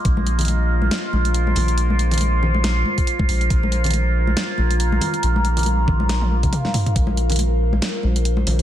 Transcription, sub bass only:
0.05 A#1
1.13 A#1
1.56 A#1
3.29 A#1
3.50 A#1
4.58 A#1
5.23 A#1
5.88 A#1
6.96 A#1
8.04 A#1
8.47 A#1

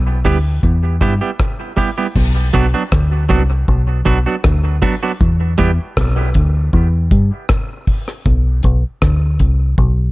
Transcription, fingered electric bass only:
Already playing: B1
0.26 D2
0.64 E2
1.01 G2
2.16 B1
2.55 B1
2.93 D2
3.31 C2
3.68 B1
4.07 B1
4.45 D2
5.21 E2
5.60 E2
5.98 B1
6.36 D2
6.74 E2
7.12 G2
8.26 B1
8.65 B1
9.03 D2
9.40 C2
9.78 B1

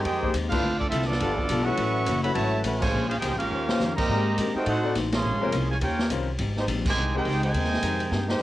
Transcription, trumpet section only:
0.04 D#4 G#4 C5 G5
0.49 D4 A4 C5 F5
0.79 C4 F4 A4 D5
0.89 C4 F4 A4 E5
1.06 B3 F4 A4 D5
1.64 B4 E5 F#5 C#6
2.21 F#4 C#5 E5 B5
2.33 F#4 C#5 E5 A5
2.81 F4 C5 C#5 G#5
3.08 C#4 G#4 C5 F5
3.19 D#4 G#4 C5 G5
3.37 C#4 G4 A#4 F5
3.95 G4 C5 D#5 A#5
4.54 D#4 A#4 C5 G5
4.67 D#4 A4 C5 F#5
5.14 G#4 C#5 F5 C6
5.70 F4 C5 C#5 G#5
5.82 F4 A#4 C#5 G5
6.88 D#4 G4 C5 G#5
7.17 D#4 G#4 C5 G5
7.44 D#4 C5 G5 G#5

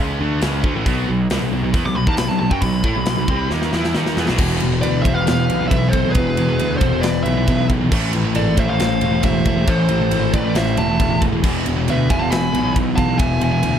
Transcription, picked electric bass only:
Already playing: C#2
0.21 D2
0.42 C#2
0.64 D2
0.75 A1
0.86 B1
1.08 B1
1.31 C2
1.41 B1
1.52 B1
1.63 B1
1.74 E2
1.86 B1
1.97 B1
2.07 D#2
2.20 B1
2.30 B1
2.42 B1
2.51 F#2
2.62 B1
2.84 A2
2.96 B1
3.07 B1
3.18 B1
3.28 C2
3.51 D#2
3.73 E2
3.96 D#2
4.17 E2
4.29 B1
4.39 E1
4.63 E1
4.84 D2
5.06 E1
5.28 E1
5.50 B1
5.71 B1
6.15 E1
6.38 E1
6.61 D2
6.81 E1
7.04 E1
7.26 B1
7.48 B1
7.92 A1
8.15 A1
8.36 G#1
8.58 A1
8.81 A1
9.02 E1
9.24 E1
9.68 A1
9.91 A1
10.13 G#1
10.34 A1
10.57 A1
10.79 E1
11.00 E1
11.44 E1
11.67 E1
11.89 D2
12.10 E1
12.32 E1
12.54 B1
12.76 B1
13.20 E1
13.42 E1
13.64 D2

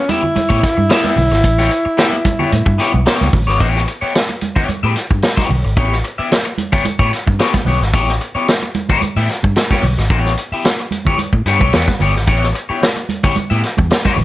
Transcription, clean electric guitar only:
0.09 B3 E4 G4 E5
0.23 muted clean electric guitar stroke
0.35 muted clean electric guitar stroke
0.49 B3 E4 G4 C#5
0.62 muted clean electric guitar stroke
0.77 muted clean electric guitar stroke
0.89 B3 E4 G4 E5
1.16 muted clean electric guitar stroke
1.32 muted clean electric guitar stroke
1.44 muted clean electric guitar stroke
1.58 B3 E4 G4 C#5
1.71 muted clean electric guitar stroke
1.85 muted clean electric guitar stroke
1.97 B3 E4 G4 E5
2.25 muted clean electric guitar stroke
2.39 B3 E4 G4 C#5
2.52 muted clean electric guitar stroke
2.66 muted clean electric guitar stroke
2.78 B3 E4 G4 C#5
2.93 muted clean electric guitar stroke
3.06 B3 E4 G4 C#5
3.33 muted clean electric guitar stroke
3.47 B3 E4 G4 C#5
3.60 B3 E4 G4 C#5
3.87 muted clean electric guitar stroke
4.01 B3 E4 G4 C#5
4.15 muted clean electric guitar stroke
4.29 muted clean electric guitar stroke
4.56 B3 E4 G4 C#5
4.69 muted clean electric guitar stroke
4.83 B3 E4 G4 E5
4.95 muted clean electric guitar stroke
5.11 muted clean electric guitar stroke
5.23 muted clean electric guitar stroke
5.37 B3 E4 G4 C#5
5.50 muted clean electric guitar stroke
5.65 muted clean electric guitar stroke
5.77 B3 E4 G4 C#5
6.04 muted clean electric guitar stroke
6.18 B3 E4 G4 E5
6.32 muted clean electric guitar stroke
6.45 muted clean electric guitar stroke
6.72 B3 E4 G4 C#5
6.86 muted clean electric guitar stroke
6.99 B3 E4 G4 C#5
7.12 muted clean electric guitar stroke
7.27 muted clean electric guitar stroke
7.39 B3 E4 G4 C#5
7.54 muted clean electric guitar stroke
7.66 B3 E4 G4 C#5
7.81 muted clean electric guitar stroke
7.93 B3 E4 G4 C#5
8.21 muted clean electric guitar stroke
8.35 B3 E4 G4 C#5
8.48 muted clean electric guitar stroke
8.63 muted clean electric guitar stroke
8.89 B3 E4 G4 C#5
9.02 muted clean electric guitar stroke
9.17 B3 E4 G4 E5
9.30 muted clean electric guitar stroke
9.44 muted clean electric guitar stroke
9.57 muted clean electric guitar stroke
9.71 B3 E4 G4 C#5
9.84 muted clean electric guitar stroke
9.99 muted clean electric guitar stroke
10.10 B3 E4 G4 C#5
10.38 muted clean electric guitar stroke
10.52 B3 E4 G4 E5
10.66 muted clean electric guitar stroke
10.80 muted clean electric guitar stroke
11.07 B3 E4 G4 C#5
11.19 muted clean electric guitar stroke
11.33 muted clean electric guitar stroke
11.46 B3 E4 G4 C#5
11.61 B3 E4 G4 C#5
11.73 B3 E4 G4 C#5
11.88 muted clean electric guitar stroke
12.00 B3 E4 G4 C#5
12.15 muted clean electric guitar stroke
12.27 B3 E4 G4 C#5
12.54 muted clean electric guitar stroke
12.69 B3 E4 G4 C#5
12.82 muted clean electric guitar stroke
12.96 muted clean electric guitar stroke
13.24 B3 E4 G4 C#5
13.36 muted clean electric guitar stroke
13.50 B3 E4 G4 E5
13.63 muted clean electric guitar stroke
13.78 muted clean electric guitar stroke
13.91 muted clean electric guitar stroke
14.05 B3 E4 G4 C#5
14.17 muted clean electric guitar stroke

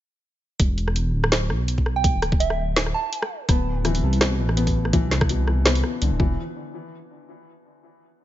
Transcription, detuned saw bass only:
0.60 E1
1.14 D1
1.50 B1
2.14 D1
2.58 D1
3.49 D1
4.03 C2
4.39 A1
5.03 C2
5.47 C2
6.02 C2
6.12 D1
6.20 E1

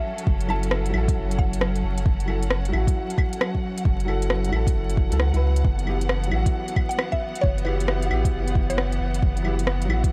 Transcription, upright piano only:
Already playing: F#3 E4 F#4
0.47 F#3 E4 A4
0.90 F#3 E4
0.98 A4
2.26 F#3 E4 A4
2.68 F#3 E4
2.77 F#4
4.05 F#3 E4 A4
4.48 F#3
4.52 E4
4.56 A4
5.10 F#3 E4 A4
5.32 F#3 E4
5.36 B4
5.85 F#3 E4 G4
6.27 F#3
6.31 E4 F#4
7.63 E4 F#4 G4
8.06 F#4
8.10 E4 G4
9.42 F#3 E4
9.46 G4
9.85 F#3
9.89 E4 F#4

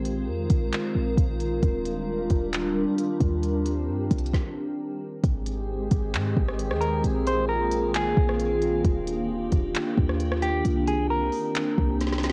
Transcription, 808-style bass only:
Already playing: A#1
0.28 F2
0.50 A#1
0.95 A#1
1.17 A#1
1.63 D#1
2.30 D#1
3.20 D#2
3.88 G2
4.11 C2
5.24 G#1
5.91 G#1
6.14 G#2
6.37 G#1
6.70 D#2
7.04 A#1
8.17 A#1
8.85 D#1
9.52 D#1
9.98 D#2
10.65 C2
11.78 C2

